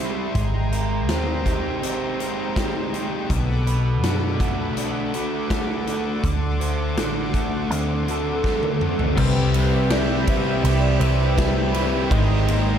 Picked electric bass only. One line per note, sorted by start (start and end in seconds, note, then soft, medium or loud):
0.00 0.31 C2 loud
0.35 1.08 G#1 medium
1.08 1.82 D#2 medium
1.82 3.25 G#1 loud
3.30 4.02 B1 medium
4.02 4.76 F#2 medium
4.76 6.19 B1 loud
6.24 6.97 D2 medium
6.97 7.70 A1 medium
7.70 9.13 D2 loud
9.17 10.60 C2 loud
10.64 10.98 C2 loud
11.00 12.06 C2 loud
12.11 12.79 G#1 loud